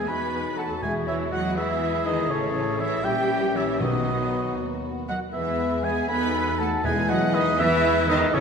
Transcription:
Already playing: G#4
0.07 E2 F#3 B3 D#4 F#4 B4 G#5 B5
0.57 A3 A4 F#5 A5
0.82 E2 G#3 E4 G#4 E5 G#5
1.07 E3 E4 C#5 E5
1.31 F#3 F#4 D#5 F#5
1.56 E3 E4 G#4 B4 E5
2.05 D#3 D#4 B4 D#5
2.29 A1 C#3 E3 C#4 E4 A4 C#5
2.79 E3 E4 C#5 E5
3.04 A#1 E3 G3 C#4 G4 E5 G5
3.55 E3 E4 C#5 E5
3.80 B1 B2 D#3 F#3 B3 D#4 F#4 B4 D#5
4.58 D#2
5.08 F#3 F#4 D#5 F#5
5.33 E2 E3 G#3 B3 E4 G#4 B4 E5
5.84 G#3 G#4 E5 G#5
6.09 E2 F#3 B3 D#4 A4 B4 G#5 B5
6.59 A3 A4 F#5 A5
6.84 E2 G#3 E4 G#4 B4 E5 G#5
7.08 F#3 F#4 D#5 F#5
7.33 D#3 D#4 B4 D#5
7.58 E3 G#3 E4 B4 E5
8.09 D#3 D#4 B4 D#5
8.33 A1 C#3 A3 C#4 E4 A4 C#5

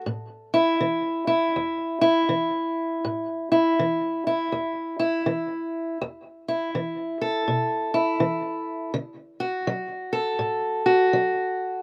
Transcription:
Already playing: A4
0.06 A2
0.54 E4
0.81 E3
1.27 E4
1.56 E2
2.01 E4
2.29 E3
3.05 A2
3.52 E4
3.79 E3
4.27 E4
4.52 E2
4.99 E4
5.26 E3
6.02 E2
6.48 E4
6.75 E3
7.22 A4
7.48 B2
7.94 E4
8.20 E3
8.94 D3
9.40 F#4
9.67 F#3
10.13 A4
10.39 A2
10.86 F#4
11.13 F#3

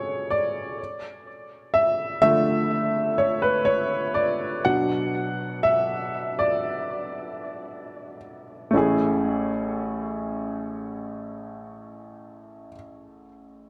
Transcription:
Already playing: G#4 A4 C#5
0.30 D5
1.74 E5
2.22 D3 F3 A3 E5
3.18 C#5
3.42 B4
3.65 C#5
4.14 D5
4.65 B2 F#3 D4 F#5
5.63 E5
6.39 D5
8.71 A1 A3 C#4
8.76 E4 G#4

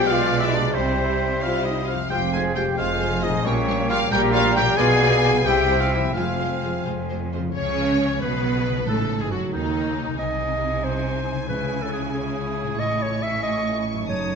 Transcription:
Already playing: B1 B2 G#3 F4
0.06 G#3 F4 B4 D5 F5
0.10 F4
0.40 E4 E5
0.51 D4 D5
0.57 C3
0.61 G3
0.66 E4
0.74 C2 C3 G3 C4 E4 C5 E5
1.41 G3 E4 F4 C5 F5
1.64 D#4 D#5
1.86 F4 F5
1.94 F2
1.98 G#3
2.03 F4
2.07 F1 G#3 F4 G4 C5 G5
2.11 F2 C4 C5 F5
2.32 G#3 F4 G#4 C5 G#5
2.55 G#3 F4 G4 C5 G5
2.77 F1 F2 G#3 F4 C5 F5 G#5
3.00 G#3 F4 C5
3.22 G#3 D#4 F4 C5 D#5
3.28 A#2
3.32 G3
3.37 G4
3.41 A#1 C#4 C#5
3.45 A#2 G3 A#3 G4 C#5 G5
3.68 G3 G4 C#5
3.89 G3 F4 G4 C#5 F5
4.11 A#1 A#2 G3 G4 A#4 C#5 G5 A#5
4.32 G3 F4 G4 C#5 F5
4.56 G3 G4 C#5 G5
4.61 B2
4.65 B3
4.69 F4
4.74 G#4 D5 G#5
4.78 B1 B2 B3 F4 D5 F5 G#5
5.01 B3 F4 D5
5.24 B3 F4 D5
5.28 C3
5.33 G3
5.38 E4
5.45 C2 C3 G3 C4 E4 G4 C5 E5 G5
5.70 G3 E4 C5
5.79 F4 F5
5.91 G3 E4 C5 E5
5.98 F3
6.03 G#3
6.07 F4
6.12 F1 G#3 F4 C5 F5 G#5
6.16 F2 C4
6.39 G#3 F4 C5
6.62 G#3 F4 C5
6.85 F1 F2 G#3 F4 C5
7.09 G#3 F4 C5
7.33 G#3 F4 C5
7.37 C#3
7.42 G#3
7.47 E4 C#5
7.55 C#2 C#3 C#4 C#5
8.20 B1 B2 B3 B4
8.68 C#3
8.73 F#3
8.77 D#4
8.82 A1 A4
8.86 A2 C#3 A3 A4
9.19 G#2 G#3 G#4
9.30 F#1 F#2 F#3 F#4
9.51 D#2 D#3 D#4
10.01 C3
10.06 G#3
10.10 D#4
10.15 C2 G#4 D#5
10.19 C3 D#4 G#5
10.84 C5
11.32 C#3
11.37 G#3
11.41 E4
11.45 C#2 E4 G#4 B4
11.50 C#3
11.82 A4
11.93 G#4
12.15 G#4
12.62 A2
12.67 A3
12.71 C#4
12.76 A1 G#4 D#5 C#6
12.80 A2 G#5
13.02 C#5
13.23 E5
13.43 D#5
13.92 F#2
13.96 A3
14.01 D#4
14.05 F#1 A4 C#5
14.09 F#2 D#4 A5 D#6

